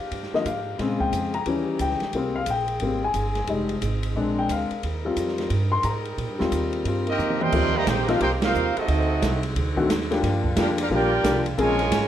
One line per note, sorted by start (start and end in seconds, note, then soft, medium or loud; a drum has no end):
0.00 0.78 F3 medium
0.00 1.44 A#3 medium
0.00 0.78 D4 medium
0.00 0.78 G4 medium
0.00 0.30 F5 medium
0.11 0.31 G2 medium
0.11 kick soft
0.11 ride medium
0.23 snare soft
0.32 0.45 D3 soft
0.32 0.45 F3 soft
0.32 0.45 A#3 medium
0.32 0.46 D#5 medium
0.32 muted upright bass stroke soft
0.32 snare soft
0.45 0.78 G#2 medium
0.45 0.97 F5 medium
0.45 kick soft
0.45 hi-hat pedal medium
0.45 ride medium
0.78 1.12 A#2 medium
0.78 1.31 C#3 soft
0.78 2.13 C#3 medium
0.78 1.46 F3 medium
0.78 1.31 G#3 soft
0.78 1.32 C4 medium
0.78 1.46 G#4 medium
0.78 kick soft
0.78 snare soft
0.78 ride medium
1.00 1.43 G5 medium
1.00 kick medium
1.12 1.45 F2 medium
1.12 hi-hat pedal medium
1.12 ride medium
1.34 1.77 A#5 medium
1.34 ride soft
1.46 1.79 D#2 medium
1.46 2.13 E3 medium
1.46 1.98 E3 soft
1.46 1.99 G3 soft
1.46 1.99 C#4 medium
1.46 2.13 D#4 medium
1.46 2.13 G4 medium
1.46 kick soft
1.46 ride medium
1.79 2.00 C#2 medium
1.79 2.32 G5 medium
1.79 kick soft
1.79 hi-hat pedal medium
1.79 ride medium
1.90 snare soft
2.00 muted upright bass stroke soft
2.00 snare soft
2.00 ride soft
2.13 2.46 C2 medium
2.13 2.39 G3 soft
2.13 3.47 G#3 medium
2.13 3.47 A#3 medium
2.13 2.40 A#3 soft
2.13 4.81 C4 medium
2.13 2.40 C4 medium
2.13 4.14 G#4 medium
2.13 kick soft
2.13 ride medium
2.36 2.47 F5 medium
2.46 2.79 A#1 medium
2.46 kick soft
2.46 hi-hat pedal medium
2.46 ride medium
2.50 3.00 G5 medium
2.68 ride medium
2.80 3.13 G#1 medium
2.80 3.01 G3 soft
2.80 3.01 A#3 soft
2.80 3.01 C4 soft
2.80 kick soft
2.80 ride medium
3.04 3.46 G#5 medium
3.14 3.47 G1 medium
3.14 kick soft
3.14 hi-hat pedal medium
3.14 ride medium
3.35 snare soft
3.35 ride soft
3.47 3.81 F1 medium
3.47 4.15 F3 medium
3.47 3.73 G3 soft
3.47 3.74 G#3 soft
3.47 4.15 D#4 medium
3.47 3.74 D#4 medium
3.47 kick soft
3.47 ride medium
3.69 ride soft
3.82 4.15 G#1 medium
3.82 kick soft
3.82 hi-hat pedal medium
3.82 ride medium
4.03 ride medium
4.15 4.48 A#1 medium
4.15 4.68 G#3 soft
4.15 4.83 G#3 medium
4.15 4.69 C4 soft
4.15 4.83 D4 medium
4.15 4.69 D4 medium
4.15 7.37 A#4 medium
4.15 kick soft
4.39 4.50 G5 medium
4.49 4.69 D2 medium
4.49 4.82 F5 medium
4.49 kick soft
4.49 hi-hat pedal medium
4.49 ride medium
4.71 muted upright bass stroke soft
4.71 ride soft
4.83 5.16 D#2 medium
4.83 7.37 G3 medium
4.83 7.37 C4 medium
4.83 7.37 D#4 medium
4.83 kick soft
4.83 ride medium
5.05 5.48 G3 medium
5.05 5.49 C4 soft
5.05 5.49 F4 medium
5.16 5.49 F2 medium
5.16 kick soft
5.16 hi-hat pedal medium
5.16 ride medium
5.28 snare soft
5.38 snare soft
5.38 ride medium
5.50 5.83 G2 medium
5.50 kick soft
5.50 ride medium
5.72 5.84 C6 medium
5.83 6.17 G#2 medium
5.83 6.16 A#5 medium
5.83 kick soft
5.83 hi-hat pedal medium
5.83 ride medium
6.05 ride soft
6.18 6.28 A#2 medium
6.18 kick soft
6.18 ride medium
6.29 6.40 G2 medium
6.39 6.51 D#2 medium
6.39 6.86 G3 medium
6.39 6.86 C4 soft
6.39 6.86 F4 medium
6.39 snare medium
6.52 6.84 D#2 loud
6.52 kick soft
6.52 hi-hat pedal medium
6.52 ride medium
6.73 ride soft
6.85 7.18 G2 medium
6.85 7.06 G3 soft
6.85 7.06 C4 soft
6.85 7.06 F4 soft
6.85 kick soft
6.85 ride medium
7.06 7.38 A#3 medium
7.06 7.38 C4 medium
7.06 7.40 C4 medium
7.06 7.38 D#4 medium
7.06 7.40 G4 medium
7.06 7.40 A#4 medium
7.06 7.40 D#5 loud
7.06 ride soft
7.18 7.52 F2 medium
7.18 hi-hat pedal medium
7.18 mid tom soft
7.30 mid tom medium
7.40 7.72 C3 medium
7.40 7.72 G3 medium
7.40 7.74 C4 medium
7.40 7.75 A#4 medium
7.40 7.75 D#5 medium
7.40 7.76 G5 medium
7.40 7.75 C6 loud
7.40 mid tom medium
7.52 7.86 D#2 medium
7.52 8.88 D#3 medium
7.52 7.72 F3 medium
7.52 7.73 A#3 medium
7.52 8.88 A#3 medium
7.52 7.73 C4 medium
7.52 10.22 C4 medium
7.52 7.73 D#4 medium
7.52 7.73 G4 medium
7.52 8.87 G4 medium
7.52 kick medium
7.52 crash medium
7.73 7.86 C3 medium
7.73 7.86 G3 medium
7.73 7.85 A#3 medium
7.73 7.88 G4 medium
7.73 7.87 C5 medium
7.73 7.88 D#5 medium
7.73 7.88 A#5 loud
7.86 8.19 A#1 loud
7.86 8.08 A#3 medium
7.86 8.08 C4 medium
7.86 8.08 D#4 medium
7.86 8.08 G4 medium
7.86 8.08 A#4 medium
7.86 8.09 C5 medium
7.86 8.09 G5 medium
7.86 kick soft
7.86 snare loud
7.86 hi-hat pedal medium
7.86 ride loud
8.08 8.20 F3 medium
8.08 8.20 A#3 medium
8.08 8.20 C4 medium
8.08 8.21 D4 medium
8.08 8.20 D#4 medium
8.08 8.21 F4 medium
8.08 8.20 F4 medium
8.08 8.21 G4 medium
8.08 8.20 A#4 medium
8.08 8.21 F5 medium
8.08 snare medium
8.08 ride medium
8.20 8.53 C2 medium
8.20 8.29 A#3 medium
8.20 8.30 C4 medium
8.20 8.31 D#4 medium
8.20 8.30 G4 medium
8.20 8.31 A#4 medium
8.20 8.31 C5 medium
8.20 8.31 G5 loud
8.20 kick soft
8.20 ride medium
8.42 8.74 A#3 medium
8.42 8.74 C4 medium
8.42 8.74 D#4 medium
8.42 8.74 F4 medium
8.42 8.74 A#4 medium
8.42 8.74 C5 medium
8.42 8.74 F5 loud
8.42 snare loud
8.42 ride medium
8.55 8.75 D#2 medium
8.55 hi-hat pedal medium
8.76 9.43 A3 medium
8.76 9.44 C4 medium
8.76 9.43 D#4 medium
8.76 9.44 F#4 medium
8.76 9.44 A4 medium
8.76 9.44 D#5 loud
8.76 muted upright bass stroke soft
8.76 ride medium
8.88 9.21 D2 medium
8.88 11.56 D3 medium
8.88 10.22 F#3 medium
8.88 10.22 D#4 medium
8.88 kick soft
8.88 ride medium
9.22 9.55 C2 loud
9.22 kick soft
9.22 snare medium
9.22 hi-hat pedal medium
9.22 ride medium
9.43 ride medium
9.56 9.88 D2 medium
9.56 kick soft
9.56 ride medium
9.76 9.88 D#3 medium
9.76 9.88 A3 medium
9.76 9.88 C4 medium
9.76 9.88 D4 medium
9.76 9.88 F#4 medium
9.76 kick medium
9.89 10.22 D#2 medium
9.89 snare medium
9.89 hi-hat pedal medium
9.89 ride medium
10.01 snare soft
10.11 10.55 F3 medium
10.11 10.55 G3 medium
10.11 10.55 A#3 medium
10.11 10.55 D4 medium
10.11 10.55 G4 medium
10.11 snare soft
10.11 ride medium
10.23 10.56 G2 medium
10.23 11.58 G3 medium
10.23 11.57 A#3 medium
10.23 12.08 F4 medium
10.23 kick soft
10.23 snare soft
10.23 ride medium
10.44 kick medium
10.57 10.89 F2 loud
10.57 10.77 F3 medium
10.57 10.76 G3 medium
10.57 10.77 A#3 medium
10.57 10.69 A#3 medium
10.57 10.77 D4 medium
10.57 10.69 D4 medium
10.57 10.69 F4 medium
10.57 10.77 G4 medium
10.57 10.69 G4 medium
10.57 10.69 A#4 medium
10.57 10.69 F5 medium
10.57 snare loud
10.57 hi-hat pedal medium
10.57 ride medium
10.61 10.70 D4 medium
10.78 10.85 A#3 medium
10.78 10.86 D4 medium
10.78 10.87 D4 medium
10.78 10.85 F4 medium
10.78 10.87 G4 medium
10.78 10.87 F5 medium
10.78 ride medium
10.82 10.87 A#4 medium
10.90 11.23 A#1 medium
10.90 11.10 F3 medium
10.90 11.10 G3 medium
10.90 11.10 A#3 medium
10.90 11.43 A#3 medium
10.90 11.10 D4 medium
10.90 11.43 D4 medium
10.90 11.10 G4 medium
10.90 11.43 G4 medium
10.90 11.44 D5 medium
10.90 kick soft
10.94 11.44 F4 medium
10.94 11.44 A#4 medium
10.94 11.44 G5 loud
11.24 11.57 C2 loud
11.24 11.43 F3 medium
11.24 11.43 G3 medium
11.24 11.44 A#3 medium
11.24 11.43 D4 medium
11.24 11.44 G4 medium
11.24 kick soft
11.24 snare medium
11.24 hi-hat pedal medium
11.24 ride medium
11.46 ride medium
11.58 11.91 A#1 loud
11.58 12.08 C#3 medium
11.58 11.77 F3 medium
11.58 12.08 F3 medium
11.58 12.08 G#3 medium
11.58 11.78 A#3 medium
11.58 12.08 A#3 medium
11.58 11.78 C4 medium
11.58 11.78 C#4 medium
11.58 12.08 F4 medium
11.58 11.78 G#4 medium
11.58 12.08 A#4 medium
11.58 12.08 C#5 medium
11.58 12.08 G#5 loud
11.58 kick soft
11.58 ride medium
11.79 snare medium
11.79 ride medium
11.91 12.08 G#1 loud
11.91 kick soft
11.91 snare medium
11.91 hi-hat pedal medium
11.91 ride loud